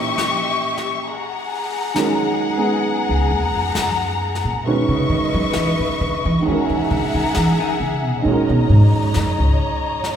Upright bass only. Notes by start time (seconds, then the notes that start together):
3.09 C#2
3.31 D#2
3.54 F2
3.77 F#2
4.45 A#2
4.67 B2
4.88 C#3
5.09 D#3
5.34 F#3
5.56 E3
5.79 D#3
6.01 D3
6.25 E3
6.48 D#3
6.70 E3
6.91 D3
7.14 D#3
7.37 E3
7.60 D#3
7.80 C#3
8.05 B2
8.25 A#2
8.50 B2
8.69 G#2
8.93 F2
9.16 F#2
9.39 C#2